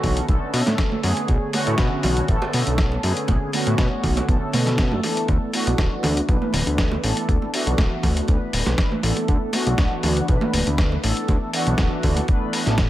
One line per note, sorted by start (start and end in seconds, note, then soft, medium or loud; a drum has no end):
0.00 0.21 B1 loud
0.00 0.25 D3 medium
0.00 0.26 A3 medium
0.00 0.26 B3 medium
0.00 0.26 C#4 medium
0.00 0.26 F#4 loud
0.00 kick medium
0.00 open hi-hat medium
0.00 low conga medium
0.17 closed hi-hat medium
0.27 0.38 B1 medium
0.27 1.00 D3 medium
0.27 1.00 A3 medium
0.27 1.01 B3 medium
0.27 1.01 C#4 medium
0.27 1.01 A4 medium
0.27 kick loud
0.27 closed hi-hat medium
0.27 muted conga soft
0.54 0.63 B2 medium
0.54 open hi-hat loud
0.66 0.75 A2 medium
0.66 snare soft
0.66 closed hi-hat medium
0.66 muted conga medium
0.78 kick loud
0.78 snare loud
0.78 closed hi-hat medium
0.92 high conga medium
1.03 1.13 F#2 medium
1.03 1.50 D3 medium
1.03 1.50 A3 medium
1.03 1.51 B3 medium
1.03 1.51 C#4 medium
1.03 1.51 G#4 medium
1.03 open hi-hat medium
1.17 closed hi-hat medium
1.17 muted conga medium
1.28 1.38 B1 loud
1.28 kick loud
1.28 closed hi-hat medium
1.52 2.25 D3 medium
1.52 2.25 A3 medium
1.52 2.26 B3 medium
1.52 2.26 C#4 medium
1.52 2.26 F#4 loud
1.52 open hi-hat medium
1.52 muted conga medium
1.67 1.75 A2 medium
1.67 closed hi-hat medium
1.78 1.88 B2 loud
1.78 kick loud
1.78 snare loud
1.78 closed hi-hat medium
2.03 2.21 B1 loud
2.03 open hi-hat medium
2.03 muted conga soft
2.03 low conga medium
2.17 closed hi-hat medium
2.28 2.38 A1 loud
2.28 3.00 D3 medium
2.28 3.01 A3 medium
2.28 3.01 B3 medium
2.28 3.01 C#4 medium
2.28 3.01 A4 medium
2.28 kick loud
2.28 closed hi-hat medium
2.42 muted conga medium
2.42 high conga medium
2.53 2.63 B2 medium
2.53 open hi-hat medium
2.67 2.98 B1 medium
2.67 closed hi-hat medium
2.78 kick loud
2.78 snare loud
2.78 closed hi-hat medium
2.92 muted conga soft
3.03 3.13 F#2 medium
3.03 3.50 D3 medium
3.03 3.50 A3 medium
3.03 3.51 B3 medium
3.03 3.51 C#4 medium
3.03 3.51 G#4 medium
3.03 open hi-hat medium
3.17 closed hi-hat medium
3.28 3.38 B1 loud
3.28 kick loud
3.28 closed hi-hat medium
3.28 muted conga medium
3.52 4.25 D3 medium
3.52 4.25 A3 medium
3.52 4.26 B3 medium
3.52 4.26 C#4 medium
3.52 4.26 F#4 loud
3.52 open hi-hat loud
3.52 high conga medium
3.67 3.75 A2 loud
3.67 closed hi-hat medium
3.78 3.88 B2 loud
3.78 kick loud
3.78 snare loud
3.78 closed hi-hat medium
3.78 muted conga soft
4.03 4.21 B1 loud
4.03 kick medium
4.03 open hi-hat medium
4.03 low conga medium
4.17 closed hi-hat medium
4.17 muted conga medium
4.27 4.38 B1 medium
4.27 5.00 D3 medium
4.27 5.00 A3 medium
4.27 5.01 B3 medium
4.27 5.01 C#4 medium
4.27 5.01 A4 medium
4.27 kick loud
4.27 closed hi-hat medium
4.53 4.94 B2 medium
4.53 open hi-hat loud
4.53 high conga medium
4.66 snare soft
4.66 closed hi-hat medium
4.66 muted conga soft
4.66 high conga medium
4.78 kick loud
4.78 snare loud
4.78 closed hi-hat medium
4.92 5.00 F#2 medium
4.92 high conga medium
5.03 5.51 E3 medium
5.03 5.51 A3 medium
5.03 5.51 B3 medium
5.03 5.51 D4 medium
5.03 5.51 A4 medium
5.03 open hi-hat medium
5.03 muted conga medium
5.17 closed hi-hat medium
5.28 5.38 D2 medium
5.28 kick loud
5.28 closed hi-hat medium
5.53 6.25 E3 medium
5.53 6.26 A3 medium
5.53 6.26 B3 medium
5.53 6.26 D4 medium
5.53 6.26 F#4 loud
5.53 open hi-hat loud
5.67 5.75 B1 medium
5.67 closed hi-hat medium
5.67 muted conga medium
5.78 5.88 D1 loud
5.78 kick loud
5.78 snare loud
5.78 closed hi-hat soft
6.03 6.21 D2 loud
6.03 open hi-hat medium
6.03 muted conga medium
6.03 low conga medium
6.17 closed hi-hat medium
6.28 6.38 B1 loud
6.28 7.01 E3 medium
6.28 7.01 A3 medium
6.28 7.01 B3 medium
6.28 7.01 D4 medium
6.28 7.01 B4 medium
6.28 kick loud
6.28 closed hi-hat medium
6.42 high conga medium
6.53 6.63 D1 medium
6.53 open hi-hat loud
6.53 muted conga soft
6.67 6.98 D2 medium
6.67 closed hi-hat medium
6.78 kick loud
6.78 snare loud
6.78 closed hi-hat medium
6.92 muted conga medium
7.03 7.13 A1 loud
7.03 7.50 E3 medium
7.03 7.51 A3 medium
7.03 7.51 B3 medium
7.03 7.51 D4 medium
7.03 7.51 A4 medium
7.03 open hi-hat medium
7.17 closed hi-hat medium
7.29 7.38 D2 medium
7.29 kick loud
7.29 closed hi-hat soft
7.42 muted conga soft
7.53 8.25 E3 medium
7.53 8.26 A3 medium
7.53 8.26 B3 medium
7.53 8.26 D4 medium
7.53 8.26 F#4 loud
7.53 open hi-hat loud
7.67 7.75 B1 medium
7.67 closed hi-hat medium
7.78 7.88 D1 loud
7.78 kick loud
7.78 snare loud
7.78 closed hi-hat soft
7.78 muted conga medium
8.03 8.21 D2 loud
8.03 kick medium
8.03 open hi-hat medium
8.03 low conga loud
8.17 closed hi-hat medium
8.28 8.38 D2 medium
8.28 9.00 E3 medium
8.28 9.01 A3 medium
8.28 9.01 B3 medium
8.28 9.01 D4 medium
8.28 9.01 B4 medium
8.28 kick loud
8.28 closed hi-hat medium
8.28 muted conga soft
8.53 8.62 D1 medium
8.53 open hi-hat loud
8.66 8.75 B1 medium
8.66 snare soft
8.66 closed hi-hat medium
8.66 muted conga medium
8.78 kick loud
8.78 snare loud
8.78 closed hi-hat medium
8.92 high conga medium
9.03 9.12 A1 medium
9.03 9.51 E3 medium
9.03 9.51 A3 medium
9.03 9.51 B3 medium
9.03 9.51 D4 medium
9.03 9.51 A4 medium
9.03 open hi-hat loud
9.16 closed hi-hat medium
9.16 muted conga medium
9.28 9.38 D2 loud
9.28 kick loud
9.28 closed hi-hat soft
9.52 10.25 E3 medium
9.52 10.25 A3 medium
9.52 10.26 B3 medium
9.52 10.26 D4 medium
9.52 10.26 F#4 loud
9.52 open hi-hat loud
9.52 muted conga medium
9.67 9.75 B1 loud
9.67 closed hi-hat medium
9.78 9.88 D1 loud
9.78 kick loud
9.78 snare loud
9.78 closed hi-hat soft
10.03 10.21 D2 loud
10.03 open hi-hat medium
10.03 muted conga soft
10.03 low conga medium
10.17 closed hi-hat medium
10.27 10.38 B1 loud
10.27 11.00 E3 medium
10.27 11.00 A3 medium
10.27 11.00 B3 medium
10.27 11.01 D4 medium
10.27 11.01 B4 medium
10.27 kick loud
10.27 closed hi-hat medium
10.41 muted conga medium
10.41 high conga loud
10.53 10.63 D1 medium
10.53 open hi-hat loud
10.67 10.98 D2 medium
10.67 closed hi-hat medium
10.78 kick loud
10.78 snare loud
10.78 closed hi-hat soft
10.92 muted conga soft
11.03 11.13 A1 loud
11.03 11.50 E3 medium
11.03 11.51 A3 medium
11.03 11.51 B3 medium
11.03 11.51 D4 medium
11.03 11.51 A4 medium
11.03 open hi-hat loud
11.17 closed hi-hat medium
11.28 11.38 D2 loud
11.28 kick loud
11.28 closed hi-hat soft
11.28 muted conga medium
11.52 12.25 E3 loud
11.52 12.25 A3 medium
11.52 12.26 B3 medium
11.52 12.26 D4 medium
11.52 12.26 F#4 loud
11.52 open hi-hat loud
11.67 11.75 B1 loud
11.67 closed hi-hat medium
11.78 11.88 D1 loud
11.78 kick loud
11.78 snare loud
11.78 closed hi-hat soft
11.78 muted conga soft
12.03 12.21 D2 loud
12.03 kick medium
12.03 open hi-hat medium
12.03 low conga medium
12.16 closed hi-hat medium
12.16 muted conga medium
12.28 12.64 E3 medium
12.28 12.64 A3 medium
12.28 12.64 B3 medium
12.28 12.64 D4 medium
12.28 12.65 B4 medium
12.28 kick loud
12.28 closed hi-hat soft
12.53 open hi-hat loud
12.66 12.90 A1 medium
12.66 12.74 E3 medium
12.66 12.74 A3 medium
12.66 12.74 B3 medium
12.66 12.74 D4 medium
12.66 12.74 A4 loud
12.66 snare soft
12.66 closed hi-hat medium
12.66 muted conga soft
12.78 kick loud
12.78 snare loud
12.78 closed hi-hat medium